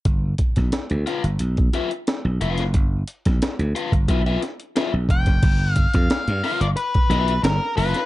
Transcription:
0.05 0.33 G1 medium
0.05 kick loud
0.05 closed hi-hat medium
0.38 kick medium
0.38 closed hi-hat medium
0.56 0.70 B1 medium
0.56 kick medium
0.56 snare soft
0.56 closed hi-hat medium
0.72 snare medium
0.72 closed hi-hat medium
0.90 1.04 D2 medium
0.90 closed hi-hat soft
1.06 1.21 F4 medium
1.06 1.22 B4 medium
1.06 1.22 F5 medium
1.06 snare soft
1.06 closed hi-hat medium
1.24 1.37 G1 medium
1.24 closed hi-hat medium
1.39 1.68 B1 medium
1.39 closed hi-hat medium
1.57 kick medium
1.57 closed hi-hat soft
1.73 1.89 F4 medium
1.73 1.89 B4 medium
1.73 1.89 E5 medium
1.73 snare soft
1.73 closed hi-hat medium
1.91 closed hi-hat soft
2.07 snare loud
2.07 closed hi-hat medium
2.25 2.38 B1 medium
2.41 2.59 F1 medium
2.41 2.62 F4 medium
2.41 2.62 B4 medium
2.41 2.62 F5 medium
2.41 closed hi-hat medium
2.58 2.74 F#1 medium
2.58 snare soft
2.58 closed hi-hat soft
2.74 3.02 G1 loud
2.74 kick loud
2.74 closed hi-hat medium
3.08 closed hi-hat medium
3.25 3.39 B1 medium
3.25 kick medium
3.25 snare soft
3.25 closed hi-hat medium
3.42 snare loud
3.42 closed hi-hat medium
3.59 3.72 D2 medium
3.59 closed hi-hat soft
3.75 3.90 F4 medium
3.75 3.91 B4 medium
3.75 3.91 F5 medium
3.75 closed hi-hat medium
3.92 4.06 G1 medium
3.92 kick medium
3.92 closed hi-hat soft
4.08 4.36 B1 medium
4.08 4.20 F4 medium
4.08 4.21 B4 medium
4.08 4.21 E5 medium
4.08 kick medium
4.08 closed hi-hat loud
4.26 4.41 F4 medium
4.26 4.40 B4 medium
4.26 4.40 E5 medium
4.26 closed hi-hat soft
4.42 snare soft
4.42 closed hi-hat medium
4.60 closed hi-hat soft
4.76 4.91 F4 medium
4.76 4.91 B4 medium
4.76 4.92 E5 medium
4.76 snare loud
4.76 closed hi-hat medium
4.94 5.07 B1 medium
5.09 5.27 F1 medium
5.09 5.74 G5 loud
5.09 kick medium
5.09 closed hi-hat medium
5.26 5.40 F#1 medium
5.26 kick medium
5.26 snare soft
5.26 closed hi-hat soft
5.43 5.86 G1 loud
5.43 kick loud
5.43 closed hi-hat medium
5.43 crash medium
5.74 5.95 F5 loud
5.74 kick medium
5.74 closed hi-hat medium
5.94 6.07 F2 medium
5.94 6.61 F5 medium
5.94 kick loud
5.94 snare soft
5.94 closed hi-hat medium
6.10 muted slap bass stroke soft
6.10 snare loud
6.10 closed hi-hat medium
6.28 6.41 G2 loud
6.28 closed hi-hat soft
6.44 6.64 F4 medium
6.44 6.65 B4 medium
6.44 6.65 F5 medium
6.44 snare soft
6.44 open hi-hat medium
6.61 6.74 G1 medium
6.61 6.67 D5 medium
6.61 closed hi-hat medium
6.76 7.43 B4 medium
6.76 closed hi-hat loud
6.94 kick loud
6.94 closed hi-hat soft
7.10 7.38 B1 medium
7.10 7.31 F4 medium
7.10 7.31 B4 medium
7.10 7.32 E5 medium
7.10 snare soft
7.10 closed hi-hat medium
7.28 closed hi-hat soft
7.43 7.58 G1 medium
7.43 7.77 A#4 medium
7.43 snare loud
7.43 closed hi-hat loud
7.77 7.92 F#1 medium
7.77 7.98 F4 medium
7.77 8.06 B4 medium
7.77 7.99 B4 medium
7.77 7.99 F5 medium
7.77 open hi-hat medium
7.94 snare soft
7.94 closed hi-hat medium

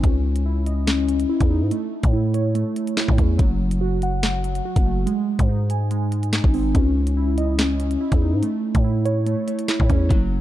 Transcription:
0.03 1.25 C#2 loud
0.03 0.86 C#4 medium
0.03 kick loud
0.03 closed hi-hat medium
0.36 closed hi-hat medium
0.46 1.28 E4 medium
0.66 1.72 D#5 medium
0.66 closed hi-hat medium
0.87 1.07 C#4 medium
0.87 snare loud
0.87 clap medium
0.87 closed hi-hat medium
1.08 1.71 C#4 medium
1.08 closed hi-hat medium
1.20 closed hi-hat medium
1.29 1.71 E4 medium
1.40 1.63 E2 loud
1.40 kick loud
1.40 closed hi-hat medium
1.50 1.71 D#4 medium
1.62 1.71 G#2 loud
1.71 2.54 A3 medium
1.71 closed hi-hat medium
2.03 2.64 A2 loud
2.03 kick loud
2.03 closed hi-hat medium
2.13 2.96 E4 medium
2.34 3.39 C#5 medium
2.34 closed hi-hat medium
2.55 2.75 A3 medium
2.55 closed hi-hat medium
2.76 3.39 A3 medium
2.76 closed hi-hat medium
2.87 closed hi-hat medium
2.97 3.39 E4 medium
2.97 snare loud
2.97 clap medium
2.97 closed hi-hat medium
3.08 3.18 A2 loud
3.08 kick loud
3.18 3.38 E2 loud
3.18 3.39 C#4 medium
3.18 kick medium
3.18 closed hi-hat medium
3.38 4.61 F#1 loud
3.38 4.22 F#3 loud
3.38 kick loud
3.38 closed hi-hat medium
3.71 closed hi-hat medium
3.81 4.64 F#4 medium
4.02 5.08 F#5 medium
4.02 closed hi-hat medium
4.23 4.43 F#3 medium
4.23 snare loud
4.23 clap medium
4.23 closed hi-hat medium
4.44 5.07 F#3 medium
4.44 closed hi-hat medium
4.55 closed hi-hat medium
4.65 5.07 F#4 medium
4.76 5.06 F#1 loud
4.76 kick loud
4.76 closed hi-hat medium
4.86 5.07 A3 medium
5.06 5.90 G#3 medium
5.06 closed hi-hat medium
5.39 6.40 G#2 loud
5.39 kick loud
5.39 closed hi-hat medium
5.49 6.32 D#4 medium
5.70 6.75 G#5 medium
5.70 closed hi-hat medium
5.91 6.10 G#3 medium
5.91 closed hi-hat medium
6.11 6.75 G#3 medium
6.11 closed hi-hat medium
6.23 closed hi-hat medium
6.33 6.75 D#4 medium
6.33 snare loud
6.33 clap medium
6.33 closed hi-hat medium
6.44 6.74 G#1 loud
6.44 kick loud
6.54 6.75 C4 medium
6.54 open hi-hat medium
6.74 7.97 C#2 loud
6.74 7.57 C#4 medium
6.74 kick loud
6.74 closed hi-hat medium
7.07 closed hi-hat medium
7.17 7.99 E4 medium
7.38 8.43 D#5 medium
7.38 closed hi-hat medium
7.58 7.78 C#4 medium
7.58 snare loud
7.58 clap medium
7.58 closed hi-hat medium
7.80 8.43 C#4 medium
7.80 closed hi-hat medium
7.91 closed hi-hat medium
8.01 8.43 E4 medium
8.12 8.34 E2 loud
8.12 kick loud
8.12 closed hi-hat medium
8.22 8.43 D#4 medium
8.33 8.42 G#2 loud
8.43 9.25 A3 medium
8.43 closed hi-hat medium
8.75 9.35 A2 loud
8.75 kick loud
8.75 closed hi-hat medium
8.84 9.67 E4 medium
9.05 10.10 C#5 medium
9.05 closed hi-hat medium
9.26 9.46 A3 medium
9.26 closed hi-hat medium
9.47 10.10 A3 medium
9.47 closed hi-hat medium
9.59 closed hi-hat medium
9.68 10.10 E4 medium
9.68 snare loud
9.68 clap medium
9.68 closed hi-hat medium
9.80 9.89 A2 loud
9.80 kick loud
9.90 10.10 E2 loud
9.90 10.11 C#4 medium
9.90 kick loud
9.90 closed hi-hat medium
10.09 10.41 F#1 loud
10.09 10.41 F#3 loud
10.09 kick loud
10.09 closed hi-hat medium

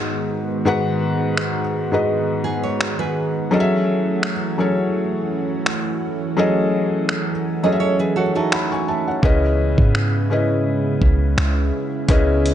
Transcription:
0.00 0.65 G#2 medium
0.00 3.48 D#3 medium
0.00 0.66 G#3 medium
0.00 3.48 G#3 medium
0.00 3.48 B3 medium
0.00 0.66 F#4 medium
0.00 9.19 F#4 medium
0.00 0.67 B4 medium
0.00 1.94 D#5 medium
0.00 impact medium
0.65 1.59 G#2 loud
0.65 1.60 G#3 medium
0.65 1.60 F#4 medium
0.65 1.60 B4 medium
0.65 1.61 F#5 loud
1.37 finger snap loud
1.92 2.98 G#2 medium
1.92 2.98 G#3 medium
1.92 2.98 F#4 medium
1.92 2.99 B4 medium
1.92 2.99 D#5 medium
2.44 2.63 G#4 medium
2.63 2.97 C#5 medium
2.81 finger snap loud
2.99 3.49 G#4 medium
2.99 3.49 B4 medium
3.51 9.19 E3 medium
3.51 4.31 F#3 loud
3.51 9.19 A3 medium
3.51 9.19 C#4 medium
3.51 4.32 C#4 medium
3.51 4.32 G#4 medium
3.51 4.32 A4 medium
3.51 3.60 D#5 medium
3.60 4.36 E5 loud
4.23 finger snap loud
4.58 5.64 F#3 medium
4.58 5.65 C#4 medium
4.58 5.65 G#4 medium
4.58 5.65 A4 medium
4.58 5.66 C#5 medium
5.66 finger snap loud
6.37 7.31 F#3 loud
6.37 7.31 C#4 medium
6.37 7.31 G#4 medium
6.37 7.32 A4 medium
6.37 7.32 D#5 loud
7.09 finger snap loud
7.63 8.69 F#3 medium
7.63 8.70 C#4 medium
7.63 8.70 G#4 medium
7.63 8.70 A4 medium
7.63 7.80 B4 medium
7.63 7.79 D#5 medium
7.63 7.71 D#5 medium
7.72 8.20 E5 medium
7.80 7.99 A4 medium
7.80 7.98 C#5 medium
7.99 8.15 G#4 medium
7.99 8.15 B4 medium
8.16 8.34 F#4 medium
8.16 8.34 A4 medium
8.16 8.35 C#5 medium
8.16 8.35 F#5 medium
8.35 9.19 D#4 medium
8.35 9.19 F#4 medium
8.35 8.51 E5 medium
8.35 8.51 A5 medium
8.52 8.71 F#5 medium
8.52 8.70 B5 medium
8.52 finger snap loud
8.72 8.87 G#5 medium
8.72 8.87 C#6 medium
8.88 9.06 E5 medium
8.88 9.06 A5 medium
9.08 9.41 C#5 medium
9.08 9.41 F#5 medium
9.22 9.76 C#2 loud
9.22 10.03 C#3 medium
9.22 12.54 C#3 medium
9.22 12.54 G#3 medium
9.22 12.54 B3 medium
9.22 10.03 C#4 medium
9.22 12.54 E4 medium
9.22 10.03 E4 medium
9.22 10.04 B4 medium
9.22 10.04 D#5 loud
9.22 kick loud
9.78 10.98 G#2 loud
9.78 kick loud
9.95 finger snap loud
10.30 11.36 C#3 medium
10.30 11.36 C#4 medium
10.30 11.37 E4 medium
10.30 11.37 B4 medium
10.30 11.37 D#5 medium
11.02 11.36 C#2 loud
11.02 kick medium
11.38 11.72 C#2 loud
11.38 finger snap loud
12.08 12.54 C#2 loud
12.08 12.54 C#3 loud
12.08 12.54 C#4 loud
12.08 12.54 E4 medium
12.08 12.54 B4 medium
12.08 12.54 D#5 loud
12.08 kick loud
12.08 closed hi-hat medium
12.46 closed hi-hat medium

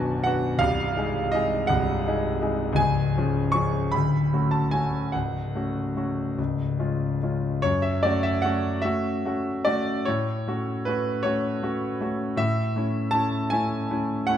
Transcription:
0.00 0.64 B0 medium
0.00 0.64 B1 medium
0.00 0.26 B3 medium
0.00 0.26 D4 medium
0.00 0.27 F#4 medium
0.00 0.24 F#5 loud
0.00 0.25 G#5 medium
0.00 0.64 A5 loud
0.24 0.58 B3 medium
0.24 0.58 D4 medium
0.24 0.58 F#4 medium
0.24 0.60 F#5 loud
0.58 0.94 C1 medium
0.58 0.96 C2 medium
0.58 1.32 F5 loud
0.97 1.30 G#3 medium
0.97 1.30 D#4 medium
0.97 1.30 G#4 medium
1.32 1.67 G#3 medium
1.32 1.67 D#4 medium
1.32 1.67 G#4 medium
1.32 1.69 D#5 loud
1.67 2.05 C1 medium
1.67 2.05 C2 medium
1.67 2.78 F#5 loud
2.06 2.39 G#3 medium
2.06 2.40 D#4 medium
2.06 2.40 G#4 medium
2.41 2.75 G#3 medium
2.41 2.75 D#4 medium
2.41 2.76 G#4 medium
2.73 3.13 C#1 medium
2.73 3.12 C#2 medium
2.73 3.53 G#5 loud
3.17 3.52 F3 medium
3.17 3.52 C#4 medium
3.17 3.52 G#4 medium
3.52 3.90 F3 medium
3.52 3.90 C#4 medium
3.52 3.90 G#4 medium
3.52 3.92 C#6 loud
3.92 4.32 D1 medium
3.92 4.32 D2 medium
3.92 4.52 B5 medium
4.33 4.69 A3 soft
4.33 4.69 C#4 soft
4.33 4.69 F#4 medium
4.51 4.72 A5 medium
4.71 5.10 A3 soft
4.71 5.10 C#4 soft
4.71 5.10 F#4 medium
4.71 5.13 G#5 medium
5.12 5.54 C#1 medium
5.12 5.54 C#2 medium
5.12 6.37 F#5 medium
5.55 5.93 A3 soft
5.55 5.93 C#4 soft
5.55 5.93 F#4 soft
5.96 6.34 A3 soft
5.96 6.34 C#4 soft
5.96 6.35 F#4 soft
6.38 6.78 C#1 medium
6.38 6.78 C#2 medium
6.79 7.17 G#3 soft
6.79 7.17 C#4 soft
6.79 7.17 F4 soft
7.23 7.60 G#3 soft
7.23 7.60 C#4 soft
7.23 7.60 F4 soft
7.62 8.03 F#2 medium
7.62 7.83 C#5 loud
7.82 8.03 E5 medium
8.03 8.40 A3 medium
8.03 8.41 C#4 soft
8.03 8.41 F#4 medium
8.03 8.23 D5 medium
8.23 8.43 E5 medium
8.42 8.80 A3 medium
8.42 8.80 C#4 medium
8.42 8.81 F#4 medium
8.42 8.83 F#5 loud
8.82 9.21 A3 medium
8.82 9.21 C#4 medium
8.82 9.21 F#4 medium
8.82 9.65 E5 loud
9.25 9.62 A3 medium
9.25 9.63 C#4 soft
9.25 9.63 F#4 medium
9.65 10.03 A3 medium
9.65 10.03 C#4 medium
9.65 10.03 F#4 medium
9.65 10.06 D5 medium
10.05 10.46 A2 medium
10.05 10.85 C#5 medium
10.48 10.82 A3 medium
10.48 10.82 C#4 medium
10.48 10.82 F#4 medium
10.85 11.21 A3 medium
10.85 11.21 C#4 medium
10.85 11.22 F#4 medium
10.85 11.23 B4 medium
11.23 11.58 A3 medium
11.23 11.59 C#4 medium
11.23 11.59 F#4 medium
11.23 12.39 C#5 medium
11.63 11.97 A3 medium
11.63 11.97 C#4 medium
11.63 11.97 F#4 medium
12.01 12.35 A3 medium
12.01 12.36 C#4 medium
12.01 12.36 F#4 medium
12.37 12.75 A2 medium
12.37 13.14 E5 loud
12.76 13.10 A3 medium
12.76 13.11 C#4 medium
12.76 13.11 E4 medium
13.11 13.48 A3 medium
13.11 13.49 C#4 medium
13.11 13.49 E4 medium
13.11 13.51 A5 loud
13.50 13.87 A3 medium
13.50 13.87 C#4 medium
13.50 13.87 E4 medium
13.50 14.28 G#5 loud
13.91 14.26 A3 medium
13.91 14.26 C#4 medium
13.91 14.26 E4 medium
14.27 14.38 A3 medium
14.27 14.38 C#4 medium
14.27 14.38 E4 medium
14.27 14.38 F#5 loud

